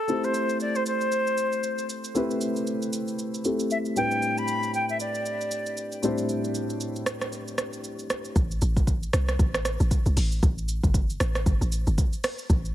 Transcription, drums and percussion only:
0.08 shaker
0.24 shaker
0.34 shaker
0.49 shaker
0.60 shaker
0.75 shaker
0.86 shaker
1.01 shaker
1.12 shaker
1.27 shaker
1.37 shaker
1.52 shaker
1.63 shaker
1.78 shaker
1.89 shaker
2.04 shaker
2.15 shaker
2.31 shaker
2.41 shaker
2.56 shaker
2.67 shaker
2.82 shaker
2.93 shaker
3.08 shaker
3.19 shaker
3.34 shaker
3.44 shaker
3.59 shaker
3.70 shaker
3.85 shaker
3.96 shaker
4.11 shaker
4.22 shaker
4.38 shaker
4.48 shaker
4.63 shaker
4.74 shaker
4.89 shaker
5.00 shaker
5.15 shaker
5.26 shaker
5.41 shaker
5.51 shaker
5.66 shaker
5.77 shaker
5.92 shaker
6.03 shaker
6.18 shaker
6.29 shaker
6.44 shaker
6.55 shaker
6.70 shaker
6.80 shaker
6.96 shaker
7.06 cross-stick, shaker
7.21 cross-stick, shaker
7.32 shaker
7.48 shaker
7.58 cross-stick, shaker
7.73 shaker
7.84 shaker
7.99 shaker
8.10 cross-stick, shaker
8.25 shaker
8.36 kick, shaker
8.51 shaker
8.61 shaker
8.77 kick, shaker
8.87 kick, shaker
9.03 shaker
9.13 cross-stick, shaker
9.29 cross-stick, shaker
9.39 kick, shaker
9.54 cross-stick, shaker
9.65 cross-stick, shaker
9.80 shaker
9.91 kick, shaker
10.06 shaker
10.17 open hi-hat, shaker
10.32 shaker
10.43 kick, shaker
10.58 shaker
10.68 shaker
10.84 kick, shaker
10.94 kick, shaker
11.10 shaker
11.20 cross-stick, shaker
11.35 cross-stick, shaker
11.46 kick, shaker
11.62 shaker
11.72 shaker
11.87 shaker
11.98 kick, shaker
12.13 shaker
12.24 cross-stick, open hi-hat, shaker
12.39 shaker
12.50 kick, shaker
12.65 shaker

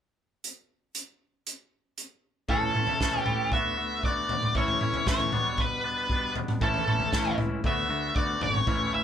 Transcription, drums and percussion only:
0.44 closed hi-hat
0.95 closed hi-hat
1.47 closed hi-hat
1.98 closed hi-hat
2.49 kick, floor tom
2.61 floor tom
2.75 mid tom
2.87 floor tom
3.00 kick, snare
3.13 floor tom
3.26 floor tom, mid tom
3.52 kick, floor tom
4.03 kick
4.29 floor tom
4.42 mid tom
4.55 kick, floor tom
4.68 floor tom
4.81 mid tom
4.94 floor tom
5.07 kick, snare
5.20 floor tom
5.32 floor tom, mid tom
5.58 kick, floor tom
6.10 kick
6.36 floor tom
6.48 mid tom
6.61 kick, floor tom
6.74 floor tom
6.88 mid tom
7.00 floor tom
7.13 kick, snare
7.25 floor tom
7.38 floor tom, mid tom
7.64 kick, floor tom
8.16 kick
8.41 floor tom
8.54 mid tom
8.67 kick, floor tom

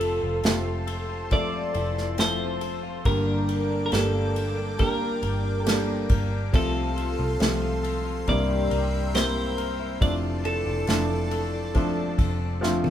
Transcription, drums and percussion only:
0.01 ride
0.44 snare, ride
0.87 ride
1.31 kick, ride
1.74 ride
1.98 snare
2.18 snare, ride
2.61 ride
3.05 kick, ride
3.49 ride
3.92 snare, ride
4.36 ride
4.79 kick, ride
5.23 ride
5.66 snare, ride
6.09 kick, ride
6.54 kick, ride
6.97 ride
7.40 snare, ride
7.84 ride
8.27 kick, ride
8.71 ride
9.15 snare, ride
9.58 ride
10.01 kick, ride
10.45 ride
10.87 snare, ride
11.31 ride
11.75 kick, ride
12.19 kick, ride
12.63 snare
12.84 high tom

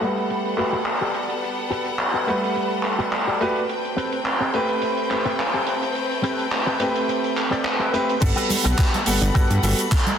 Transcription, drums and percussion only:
0.02 closed hi-hat, shaker
0.17 closed hi-hat, shaker
0.30 closed hi-hat, shaker
0.45 closed hi-hat
0.58 clap, closed hi-hat, shaker
0.73 closed hi-hat, shaker
0.86 clap, closed hi-hat, shaker
1.02 closed hi-hat
1.14 closed hi-hat, shaker
1.30 closed hi-hat, shaker
1.44 closed hi-hat, shaker
1.58 closed hi-hat
1.71 closed hi-hat, shaker
1.86 closed hi-hat, shaker
1.99 clap, closed hi-hat
2.15 closed hi-hat
2.28 closed hi-hat, shaker
2.42 closed hi-hat, shaker
2.56 closed hi-hat, shaker
2.71 closed hi-hat
2.83 clap, closed hi-hat, shaker
2.99 closed hi-hat, shaker
3.13 clap, closed hi-hat, shaker
3.28 closed hi-hat
3.41 closed hi-hat, shaker
3.56 closed hi-hat, shaker
3.69 closed hi-hat, shaker
3.85 closed hi-hat
3.98 closed hi-hat, shaker
4.12 closed hi-hat, shaker
4.25 clap, closed hi-hat, shaker
4.41 closed hi-hat
4.54 closed hi-hat, shaker
4.69 closed hi-hat, shaker
4.82 closed hi-hat, shaker
4.97 closed hi-hat
5.11 clap, closed hi-hat, shaker
5.25 closed hi-hat, shaker
5.39 clap, closed hi-hat, shaker
5.54 closed hi-hat
5.67 closed hi-hat, shaker
5.83 closed hi-hat, shaker
5.95 closed hi-hat, shaker
6.11 closed hi-hat, shaker
6.24 closed hi-hat, shaker
6.39 closed hi-hat, shaker
6.52 clap, closed hi-hat, shaker
6.67 closed hi-hat, shaker
6.80 closed hi-hat, shaker
6.96 closed hi-hat, shaker
7.09 closed hi-hat, shaker
7.24 closed hi-hat, shaker
7.37 clap, closed hi-hat, shaker
7.52 closed hi-hat, shaker
7.64 clap, closed hi-hat, shaker
7.80 closed hi-hat
7.94 closed hi-hat, shaker
8.09 closed hi-hat, shaker
8.22 kick, closed hi-hat, crash, cabasa, shaker
8.37 closed hi-hat, cabasa
8.50 open hi-hat, high conga, cabasa, shaker
8.65 closed hi-hat, cabasa, shaker
8.78 kick, clap, closed hi-hat, cabasa, shaker
8.94 closed hi-hat, muted conga
9.06 open hi-hat, cabasa, shaker
9.22 closed hi-hat, high conga, cabasa, shaker
9.35 kick, closed hi-hat, cabasa, shaker
9.51 closed hi-hat
9.63 open hi-hat, cabasa, shaker
9.79 closed hi-hat, cabasa, shaker
9.92 kick, clap, closed hi-hat, cabasa, shaker
10.07 closed hi-hat, high conga, cabasa

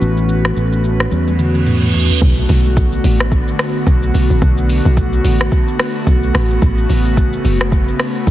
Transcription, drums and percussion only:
0.02 shaker
0.17 shaker
0.29 shaker
0.45 cross-stick, shaker
0.57 shaker
0.73 shaker
0.84 shaker
1.00 cross-stick, shaker
1.12 high tom, shaker
1.28 high tom, shaker
1.39 mid tom, shaker
1.55 mid tom, shaker
1.66 mid tom, shaker
1.83 mid tom, shaker
1.94 floor tom, shaker
2.10 floor tom, shaker
2.21 kick, shaker
2.37 shaker
2.49 open hi-hat, shaker
2.65 shaker
2.77 kick, shaker
2.93 shaker
3.04 open hi-hat, shaker
3.20 cross-stick, shaker
3.32 kick, shaker
3.48 shaker
3.59 cross-stick, open hi-hat, shaker
3.87 kick, shaker
4.03 shaker
4.14 open hi-hat, shaker
4.30 shaker
4.42 kick, shaker
4.58 shaker
4.69 open hi-hat, shaker
4.86 shaker
4.97 kick, shaker
5.13 shaker
5.25 open hi-hat, shaker
5.40 cross-stick, shaker
5.52 kick, shaker
5.68 shaker
5.79 cross-stick, open hi-hat, shaker
6.07 kick, shaker
6.23 shaker
6.35 cross-stick, open hi-hat, shaker
6.51 shaker
6.62 kick, shaker
6.78 shaker
6.90 open hi-hat, shaker
7.06 shaker
7.17 kick, shaker
7.33 shaker
7.45 open hi-hat, shaker
7.61 cross-stick, shaker
7.72 kick, shaker
7.88 shaker
8.00 cross-stick, open hi-hat, shaker
8.27 kick, shaker

